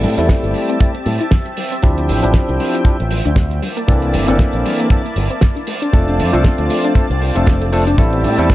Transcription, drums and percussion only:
0.04 open hi-hat loud
0.18 snare soft
0.18 closed hi-hat medium
0.29 kick loud
0.29 snare loud
0.29 closed hi-hat medium
0.44 closed hi-hat soft
0.54 open hi-hat medium
0.70 closed hi-hat medium
0.80 kick loud
0.80 closed hi-hat medium
0.95 closed hi-hat soft
1.06 open hi-hat medium
1.21 closed hi-hat medium
1.31 kick loud
1.31 snare loud
1.31 closed hi-hat medium
1.46 closed hi-hat soft
1.57 open hi-hat loud
1.72 closed hi-hat medium
1.82 kick loud
1.82 closed hi-hat medium
1.98 closed hi-hat soft
2.09 open hi-hat loud
2.24 closed hi-hat medium
2.34 kick loud
2.34 snare loud
2.34 closed hi-hat medium
2.49 closed hi-hat soft
2.60 open hi-hat loud
2.75 closed hi-hat medium
2.85 kick loud
2.85 closed hi-hat medium
3.00 closed hi-hat soft
3.11 open hi-hat loud
3.25 closed hi-hat medium
3.36 kick loud
3.36 snare loud
3.36 closed hi-hat medium
3.51 closed hi-hat soft
3.63 open hi-hat loud
3.77 closed hi-hat medium
3.88 kick loud
3.88 closed hi-hat medium
4.02 closed hi-hat soft
4.14 open hi-hat loud
4.28 snare soft
4.28 closed hi-hat medium
4.39 kick loud
4.39 snare loud
4.39 closed hi-hat medium
4.53 closed hi-hat soft
4.66 open hi-hat loud
4.80 closed hi-hat medium
4.90 kick loud
4.90 closed hi-hat medium
5.06 closed hi-hat soft
5.16 open hi-hat loud
5.30 closed hi-hat medium
5.41 kick loud
5.41 snare loud
5.41 closed hi-hat medium
5.57 closed hi-hat soft
5.67 open hi-hat loud
5.82 closed hi-hat medium
5.93 kick loud
5.93 closed hi-hat medium
6.08 closed hi-hat soft
6.20 open hi-hat loud
6.34 closed hi-hat medium
6.44 kick loud
6.44 snare loud
6.44 closed hi-hat medium
6.58 closed hi-hat soft
6.70 open hi-hat loud
6.84 closed hi-hat medium
6.95 kick loud
6.95 closed hi-hat medium
7.11 closed hi-hat soft
7.22 open hi-hat loud
7.36 closed hi-hat medium
7.47 kick loud
7.47 snare loud
7.47 closed hi-hat medium
7.62 closed hi-hat soft
7.73 open hi-hat loud
7.87 closed hi-hat medium
7.98 kick loud
7.98 closed hi-hat medium
7.98 shaker soft
8.13 closed hi-hat soft
8.24 open hi-hat loud
8.24 shaker medium
8.38 snare soft
8.38 closed hi-hat medium
8.38 shaker medium
8.50 kick loud
8.50 snare loud
8.50 closed hi-hat medium
8.50 shaker soft

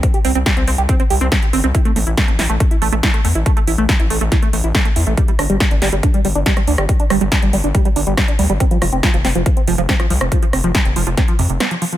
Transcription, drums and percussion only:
0.03 kick loud
0.03 closed hi-hat medium
0.14 closed hi-hat soft
0.25 open hi-hat loud
0.46 kick loud
0.46 snare loud
0.46 closed hi-hat medium
0.57 closed hi-hat soft
0.67 open hi-hat loud
0.78 closed hi-hat soft
0.89 kick loud
0.89 closed hi-hat medium
1.00 closed hi-hat soft
1.10 open hi-hat loud
1.21 closed hi-hat soft
1.32 kick loud
1.32 snare loud
1.32 closed hi-hat medium
1.43 closed hi-hat soft
1.53 open hi-hat loud
1.64 closed hi-hat soft
1.75 kick loud
1.75 closed hi-hat medium
1.85 closed hi-hat soft
1.96 open hi-hat loud
2.07 closed hi-hat soft
2.17 kick loud
2.17 snare loud
2.17 closed hi-hat medium
2.28 closed hi-hat soft
2.39 snare medium
2.39 open hi-hat loud
2.50 closed hi-hat soft
2.60 kick loud
2.60 closed hi-hat medium
2.71 closed hi-hat soft
2.82 open hi-hat loud
2.93 closed hi-hat soft
3.03 kick loud
3.03 snare loud
3.03 closed hi-hat medium
3.14 closed hi-hat soft
3.25 open hi-hat loud
3.35 closed hi-hat soft
3.46 kick loud
3.46 closed hi-hat medium
3.57 closed hi-hat soft
3.67 open hi-hat loud
3.78 closed hi-hat soft
3.89 kick loud
3.89 snare loud
3.89 closed hi-hat medium
4.00 closed hi-hat soft
4.10 open hi-hat loud
4.21 closed hi-hat soft
4.32 kick loud
4.32 snare medium
4.32 closed hi-hat medium
4.43 closed hi-hat soft
4.53 open hi-hat loud
4.64 closed hi-hat soft
4.75 kick loud
4.75 snare loud
4.75 closed hi-hat medium
4.85 closed hi-hat soft
4.96 open hi-hat loud
5.17 kick loud
5.17 closed hi-hat medium
5.28 closed hi-hat soft
5.39 cross-stick medium
5.39 open hi-hat loud
5.50 closed hi-hat soft
5.60 kick loud
5.60 snare loud
5.60 closed hi-hat medium
5.71 closed hi-hat soft
5.82 snare medium
5.82 open hi-hat loud
5.93 closed hi-hat soft
6.03 kick loud
6.03 closed hi-hat medium
6.14 closed hi-hat soft
6.25 open hi-hat loud
6.35 closed hi-hat soft
6.46 kick loud
6.46 snare loud
6.46 closed hi-hat medium
6.57 cross-stick medium
6.57 closed hi-hat soft
6.67 open hi-hat loud
6.78 cross-stick medium
6.78 closed hi-hat soft
6.89 kick loud
6.89 closed hi-hat medium
7.00 closed hi-hat soft
7.10 cross-stick medium
7.10 open hi-hat loud
7.21 closed hi-hat soft
7.32 kick loud
7.32 snare loud
7.32 closed hi-hat medium
7.42 closed hi-hat soft
7.53 open hi-hat loud
7.64 closed hi-hat soft
7.75 kick loud
7.75 closed hi-hat medium
7.85 closed hi-hat soft
7.96 open hi-hat medium
8.07 closed hi-hat soft
8.17 kick loud
8.17 cross-stick medium
8.17 snare loud
8.17 closed hi-hat medium
8.28 closed hi-hat soft
8.39 open hi-hat loud
8.50 closed hi-hat soft
8.60 kick loud
8.60 closed hi-hat medium
8.71 closed hi-hat soft
8.82 cross-stick medium
8.82 open hi-hat loud
8.92 closed hi-hat soft
9.03 kick loud
9.03 snare loud
9.03 closed hi-hat medium
9.14 closed hi-hat soft
9.25 snare medium
9.25 open hi-hat loud
9.35 closed hi-hat soft
9.46 kick loud
9.46 closed hi-hat medium
9.57 closed hi-hat soft
9.68 open hi-hat medium
9.89 kick loud
9.89 snare loud
9.89 closed hi-hat medium
10.00 cross-stick medium
10.00 closed hi-hat soft
10.10 open hi-hat medium
10.21 cross-stick medium
10.21 closed hi-hat soft
10.32 kick loud
10.32 closed hi-hat medium
10.43 closed hi-hat soft
10.53 cross-stick medium
10.53 open hi-hat loud
10.64 closed hi-hat soft
10.75 kick loud
10.75 snare loud
10.75 closed hi-hat medium
10.85 closed hi-hat soft
10.96 open hi-hat loud
11.07 closed hi-hat soft
11.17 kick loud
11.17 snare medium
11.17 closed hi-hat medium
11.28 closed hi-hat soft
11.39 open hi-hat medium
11.50 closed hi-hat soft
11.60 cross-stick medium
11.60 snare loud
11.60 closed hi-hat medium
11.71 closed hi-hat soft
11.82 open hi-hat loud
11.93 closed hi-hat soft

